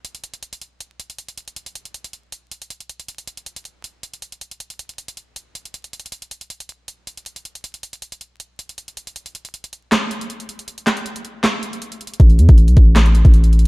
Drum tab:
HH |x--x--x--x--x--x--x-----x-----x--x--x--x--x--x--|x--x--x--x--x--x--x-----x-----x--x--x--x--x--x--|x--x--x--x--x--x--x-----x-----x--x--x--x--x--x--|x--x--x--x--x--x--x-----x-----x--x--x--x--x-x-x-|
CP |------------------------------------------------|------------------------------------------------|------------------------------------------------|------------------------------------------------|
SD |------------------------------------------------|------------------------------------------------|------------------------------------------------|------------------------------------------------|
BD |------------------------------------------------|------------------------------------------------|------------------------------------------------|------------------------------------------------|

HH |x--x--x--x--x--x--x-----x-----x--x--x--x--x--x--|x--x--x--x--x--x--x-----x-----x--x--x--x--x--x--|x--x--x--x--x--x--x-----x-----x--x--x--x--x--x--|x--x--x--x--x--x--x-----x-----x--x--x--x--x-x-x-|
CP |------------------------------------------------|------------------------------------------------|------------------------x-----------------------|------x-----------------x-----------------------|
SD |------------------------------------------------|------------------------------------------------|------------------------o-----------------------|------o-----------------o-----------------------|
BD |------------------------------------------------|------------------------------------------------|------------------------------------------------|------------------------------------------------|

HH |x--x--x--x--x--x--x-----x--x--x--x--x--x--x-x---|
CP |------------------------x-----------------------|
SD |------------------------o-----------------------|
BD |o--------o--------o--------------o--------------|